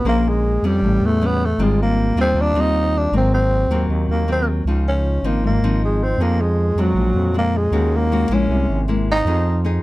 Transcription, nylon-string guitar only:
0.05 A#3 C#4 G#4 C5
0.64 G3 B3 C#4
0.84 A2
1.21 G3 B3 C#4
1.59 G#2 G3 C4 F4
2.17 G3 C4 F4
2.36 D#3
2.55 G3 C4 F4
3.13 G#2 F#3 A#3 C4
3.71 F#3 A#3 C4
3.90 D#3
4.28 F#3 A#3 C4
4.67 C#3 F3 D#4
5.24 F3 C4 D#4
5.44 G#2
5.64 F3 C4 D#4
6.20 F3 B3 D#4 G#4
6.78 F#3 G#3 D4
6.96 A#2
7.34 G#3 D4
7.72 D#3 G#3 C#4 F#4
8.12 G#3 C#4 F#4
8.31 G#3 A#3 E4
8.51 C3
8.88 G#3 A#3 E4
9.26 F3 B3 D#4 G#4
9.65 B3 D#4 G#4

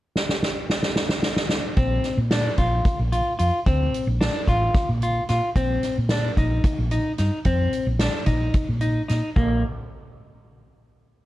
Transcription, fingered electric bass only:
1.77 A#1
2.18 A#2
2.58 A#1
2.99 A#1
3.40 F2
3.66 D2
4.07 A#1
4.48 A1
4.89 A#2
5.30 A#2
5.56 A#1
5.98 A#2
6.37 A#1
6.78 A#1
7.19 G2
7.45 F2
7.87 A#1
8.27 A#1
8.69 A#2
9.10 A#2
9.37 A#1

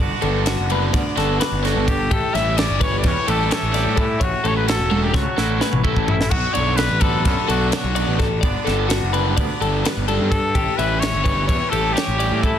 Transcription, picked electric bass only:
0.00 G1
0.23 G1
0.59 F#1
0.94 D2
1.17 G1
1.52 G1
1.76 G1
2.11 A1
2.34 A1
2.70 G1
3.05 E2
3.28 A1
3.63 A1
3.87 A2
4.21 A1
4.44 A1
4.79 E1
5.14 C#2
5.38 A1
5.73 A1
5.96 A1
6.32 B1
6.57 B1
6.91 A1
7.26 F#2
7.49 B1
7.84 B1
8.07 A1
8.43 G1
8.67 G1
9.03 F#1
9.38 D2
9.61 G1
9.97 G1
10.21 G2
10.56 A1
10.79 A1
11.14 G1
11.49 E2
11.73 A1
12.08 A1
12.32 A2

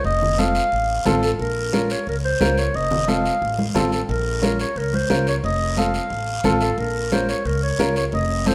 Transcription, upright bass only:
0.04 F1
0.72 A1
1.05 A1
1.39 A#1
2.07 C#2
2.41 C#2
2.74 F1
3.42 A1
3.75 A1
4.09 A#1
4.76 C#2
5.10 C#2
5.44 F1
6.11 A1
6.44 A1
6.78 A#1
7.45 C#2
7.79 C#2
8.13 F1

